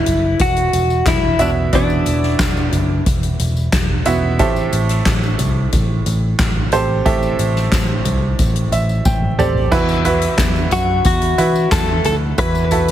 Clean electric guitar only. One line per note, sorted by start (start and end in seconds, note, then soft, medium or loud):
0.00 0.43 E4 medium
0.41 1.07 F#4 loud
1.08 1.41 E4 loud
1.41 1.50 D4 medium
1.75 3.03 D4 medium
10.72 11.05 F#4 medium
11.06 11.72 F#4 medium
11.72 12.04 A4 loud
12.06 12.14 A4 loud
12.39 12.91 B4 loud